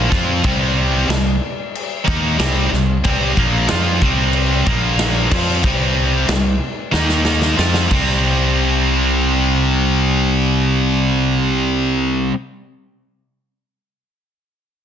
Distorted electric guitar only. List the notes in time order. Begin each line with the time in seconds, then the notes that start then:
Already playing: A#3
0.10 F3 C4 F4
0.44 C3 G3 C4
1.08 C3 G3
2.05 D#3 A#3 D#4
2.38 C3 G3 C4
2.70 C3 G3
3.04 C3 G3 C4
3.38 A#2 F3 A#3
3.67 F3 C4 F4
4.02 C3 G3 C4
4.66 A#2 F3 A#3
5.31 F3 C4 F4
5.63 C3 G3 C4
6.28 C3 G3
6.92 D#3 A#3 D#4
7.57 F3 C4 F4
7.89 C3 G3
7.93 C4